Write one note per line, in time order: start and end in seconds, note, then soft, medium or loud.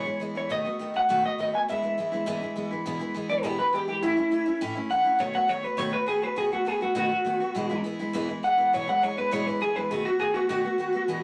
0.00 0.19 C#5 medium
0.05 0.19 E3 soft
0.05 0.20 G#3 soft
0.05 0.20 B3 soft
0.05 0.20 E4 medium
0.20 0.35 E3 medium
0.20 0.36 G#3 medium
0.20 0.35 B3 medium
0.20 0.34 E4 medium
0.35 0.50 E3 soft
0.35 0.50 G#3 soft
0.35 0.49 B3 soft
0.35 0.50 E4 medium
0.35 0.50 C#5 medium
0.49 0.65 B2 medium
0.49 0.65 D#3 medium
0.49 0.65 A3 medium
0.49 0.65 B3 medium
0.49 0.64 F#4 medium
0.49 0.96 D#5 medium
0.65 0.79 A3 soft
0.65 0.80 B3 medium
0.65 0.80 F#4 medium
0.79 0.94 D#3 medium
0.79 0.95 A3 medium
0.79 0.94 B3 medium
0.79 0.93 F#4 medium
0.94 1.09 A3 soft
0.94 1.09 B3 soft
0.94 1.09 F#4 medium
0.94 1.25 F#5 loud
1.09 1.24 B2 medium
1.09 1.24 D#3 medium
1.09 1.24 A3 medium
1.09 1.23 B3 loud
1.09 1.22 F#4 loud
1.23 1.38 A3 soft
1.23 1.39 B3 soft
1.23 1.38 F#4 medium
1.23 1.39 D#5 medium
1.38 1.53 D#3 medium
1.38 1.54 A3 medium
1.38 1.54 B3 medium
1.38 1.52 F#4 medium
1.38 1.53 D#5 medium
1.54 1.69 A3 soft
1.54 1.69 B3 soft
1.54 1.68 F#4 soft
1.54 1.60 G#5 medium
1.68 1.83 E2 medium
1.68 1.83 B2 medium
1.68 1.83 E3 medium
1.68 1.83 G#3 medium
1.68 1.82 B3 medium
1.68 1.81 E4 medium
1.68 2.68 E5 medium
1.82 1.97 E3 soft
1.82 1.97 G#3 soft
1.82 1.98 B3 medium
1.82 1.97 E4 medium
1.98 2.12 E3 medium
1.98 2.12 G#3 medium
1.98 2.12 B3 medium
1.98 2.11 E4 medium
2.12 2.26 E3 soft
2.12 2.26 G#3 medium
2.12 2.27 B3 medium
2.12 2.27 E4 medium
2.26 2.41 E2 loud
2.26 2.41 B2 loud
2.26 2.42 E3 loud
2.26 2.42 G#3 loud
2.26 2.41 B3 loud
2.26 2.40 E4 loud
2.41 2.54 E3 medium
2.41 2.55 G#3 soft
2.41 2.56 B3 soft
2.41 2.56 E4 medium
2.56 2.71 E3 medium
2.56 2.71 G#3 medium
2.56 2.70 B3 medium
2.56 2.69 E4 medium
2.71 2.85 E3 soft
2.71 2.85 G#3 soft
2.71 2.86 B3 soft
2.71 2.85 E4 medium
2.86 3.00 E2 medium
2.86 3.00 B2 medium
2.86 3.00 E3 medium
2.86 3.00 G#3 medium
2.86 2.99 B3 medium
2.86 2.98 E4 loud
2.99 3.13 E3 medium
2.99 3.14 G#3 medium
2.99 3.15 B3 medium
2.99 3.14 E4 medium
3.14 3.29 E3 medium
3.14 3.30 G#3 medium
3.14 3.29 B3 medium
3.14 3.28 E4 medium
3.29 3.43 E3 soft
3.29 3.43 G#3 soft
3.29 3.43 B3 medium
3.29 3.44 E4 medium
3.29 3.44 D5 medium
3.43 3.58 E2 medium
3.43 3.59 B2 medium
3.43 3.59 E3 loud
3.43 3.59 G#3 medium
3.43 3.58 B3 loud
3.43 3.57 E4 loud
3.43 3.58 G4 loud
3.58 3.71 E3 soft
3.58 3.73 G#3 soft
3.58 3.74 B3 soft
3.58 3.73 E4 medium
3.58 3.73 B4 medium
3.73 3.88 E3 medium
3.73 3.88 G#3 medium
3.73 3.87 B3 medium
3.73 3.86 E4 medium
3.73 3.88 G4 medium
3.87 4.01 E3 soft
3.87 4.03 G#3 soft
3.87 4.03 B3 soft
3.87 4.03 E4 soft
3.87 4.03 G4 medium
4.03 4.17 A2 medium
4.03 4.18 E3 medium
4.03 4.18 A3 medium
4.03 4.17 C#4 medium
4.03 4.60 E4 loud
4.03 4.16 E4 medium
4.17 4.31 A3 soft
4.17 4.31 C#4 medium
4.17 4.32 E4 medium
4.31 4.46 E3 medium
4.31 4.47 A3 medium
4.31 4.46 C#4 medium
4.31 4.44 E4 medium
4.46 4.61 A3 medium
4.46 4.61 C#4 medium
4.46 4.61 E4 medium
4.61 4.76 A2 loud
4.61 4.76 E3 loud
4.61 4.76 A3 loud
4.61 4.75 C#4 loud
4.61 4.74 E4 loud
4.75 4.90 A3 soft
4.75 4.90 C#4 medium
4.75 4.91 E4 medium
4.90 5.05 E3 medium
4.90 5.06 A3 medium
4.90 5.04 C#4 medium
4.90 5.03 E4 medium
4.90 5.19 F#5 loud
5.04 5.19 A3 soft
5.04 5.20 C#4 soft
5.04 5.20 E4 soft
5.19 5.34 B2 medium
5.19 5.35 D#3 medium
5.19 5.35 A3 medium
5.19 5.34 B3 medium
5.19 5.32 F#4 medium
5.19 5.35 C#5 medium
5.33 5.48 A3 soft
5.33 5.48 B3 medium
5.33 5.49 F#4 medium
5.33 5.49 F#5 loud
5.48 5.64 D#3 medium
5.48 5.64 A3 medium
5.48 5.63 B3 medium
5.48 5.62 F#4 medium
5.48 5.64 C#5 medium
5.63 5.77 A3 soft
5.63 5.77 B3 medium
5.63 5.78 F#4 medium
5.63 5.79 B4 loud
5.77 5.93 B2 medium
5.77 5.93 D#3 medium
5.77 5.93 A3 loud
5.77 5.92 B3 loud
5.77 5.91 F#4 loud
5.77 5.93 C#5 medium
5.92 6.06 A3 soft
5.92 6.07 B3 soft
5.92 6.08 F#4 soft
5.92 6.07 B4 medium
6.06 6.22 D#3 medium
6.06 6.23 A3 medium
6.06 6.22 B3 medium
6.06 6.21 F#4 medium
6.06 6.23 G#4 medium
6.22 6.36 A3 soft
6.22 6.36 B3 soft
6.22 6.37 F#4 medium
6.22 6.37 B4 medium
6.36 6.52 B2 medium
6.36 6.52 D#3 medium
6.36 6.52 A3 medium
6.36 6.52 B3 medium
6.36 6.51 F#4 medium
6.36 6.52 G#4 medium
6.52 6.65 A3 soft
6.52 6.66 B3 medium
6.52 6.66 F#4 medium
6.52 6.68 F#4 medium
6.65 6.81 D#3 medium
6.65 6.82 A3 medium
6.65 6.81 B3 medium
6.65 6.80 F#4 medium
6.65 6.82 G#4 medium
6.81 6.94 A3 soft
6.81 6.95 B3 soft
6.81 6.95 F#4 medium
6.81 6.96 F#4 medium
6.95 7.11 B2 loud
6.95 7.11 D#3 medium
6.95 7.11 A3 loud
6.95 7.10 B3 loud
6.95 7.08 F#4 loud
6.95 7.82 F#4 loud
7.09 7.24 A3 soft
7.09 7.25 B3 medium
7.09 7.25 F#4 medium
7.25 7.40 D#3 medium
7.25 7.41 A3 medium
7.25 7.40 B3 medium
7.25 7.39 F#4 medium
7.40 7.55 A3 soft
7.40 7.55 B3 medium
7.40 7.55 F#4 medium
7.55 7.70 E2 medium
7.55 7.70 B2 medium
7.55 7.70 E3 medium
7.55 7.70 G#3 loud
7.55 7.69 B3 medium
7.55 7.68 E4 loud
7.69 7.83 E3 medium
7.69 7.83 G#3 medium
7.69 7.84 B3 medium
7.69 7.84 E4 medium
7.84 7.99 E3 medium
7.84 8.00 G#3 medium
7.84 7.99 B3 medium
7.84 7.98 E4 loud
7.99 8.13 E3 medium
7.99 8.13 G#3 medium
7.99 8.14 B3 medium
7.99 8.14 E4 medium
8.13 8.29 E2 loud
8.13 8.29 B2 medium
8.13 8.29 E3 loud
8.13 8.29 G#3 loud
8.13 8.28 B3 loud
8.13 8.27 E4 loud
8.29 8.42 E3 soft
8.29 8.43 G#3 medium
8.29 8.44 B3 soft
8.29 8.43 E4 medium
8.43 8.58 E3 medium
8.43 8.58 G#3 medium
8.43 8.57 B3 medium
8.43 8.57 E4 medium
8.43 8.72 F#5 loud
8.58 8.73 E3 soft
8.58 8.74 G#3 soft
8.58 8.73 B3 soft
8.58 8.73 E4 medium
8.73 8.88 E2 medium
8.73 8.88 B2 medium
8.73 8.89 E3 medium
8.73 8.88 G#3 medium
8.73 8.87 B3 medium
8.73 8.86 E4 medium
8.73 8.88 C#5 loud
8.87 9.01 E3 soft
8.87 9.02 G#3 medium
8.87 9.03 B3 medium
8.87 9.02 E4 medium
8.87 9.03 F#5 loud
9.02 9.17 E3 medium
9.02 9.17 G#3 medium
9.02 9.17 B3 medium
9.02 9.16 E4 medium
9.02 9.17 C#5 medium
9.17 9.31 E3 soft
9.17 9.31 G#3 soft
9.17 9.32 B3 medium
9.17 9.32 E4 medium
9.17 9.32 B4 medium
9.31 9.46 E2 medium
9.31 9.47 B2 loud
9.31 9.47 E3 loud
9.31 9.47 G#3 loud
9.31 9.46 B3 loud
9.31 9.45 E4 loud
9.31 9.47 C#5 medium
9.47 9.60 E3 soft
9.47 9.61 G#3 soft
9.47 9.61 B3 soft
9.47 9.61 E4 medium
9.47 9.61 B4 medium
9.61 9.76 E3 medium
9.61 9.76 G#3 medium
9.61 9.75 B3 medium
9.61 9.75 E4 medium
9.61 9.76 G#4 loud
9.76 9.91 E3 soft
9.76 9.91 G#3 soft
9.76 9.91 B3 medium
9.76 9.91 E4 medium
9.76 9.91 B4 medium
9.91 10.05 B2 medium
9.91 10.06 D#3 medium
9.91 10.06 A3 medium
9.91 10.05 B3 medium
9.91 10.04 F#4 loud
9.91 10.05 G#4 medium
10.05 10.19 A3 soft
10.05 10.20 B3 medium
10.05 10.20 F#4 medium
10.19 10.34 D#3 medium
10.19 10.35 A3 medium
10.19 10.34 B3 medium
10.19 10.33 F#4 medium
10.19 10.34 G#4 loud
10.34 10.48 A3 medium
10.34 10.49 B3 medium
10.34 10.48 F#4 medium
10.34 10.49 F#4 medium
10.49 10.64 B2 loud
10.49 10.64 D#3 medium
10.49 10.64 A3 medium
10.49 10.64 B3 loud
10.49 11.23 F#4 loud
10.49 10.62 F#4 loud
10.63 10.78 A3 soft
10.63 10.79 B3 medium
10.63 10.78 F#4 medium
10.78 10.93 D#3 medium
10.78 10.94 A3 medium
10.78 10.93 B3 medium
10.78 10.91 F#4 medium
10.93 11.08 A3 soft
10.93 11.08 B3 medium
10.93 11.08 F#4 medium
11.08 11.23 E2 medium
11.08 11.23 B2 medium
11.08 11.23 E3 medium
11.08 11.23 G#3 medium
11.08 11.22 B3 medium
11.08 11.21 E4 medium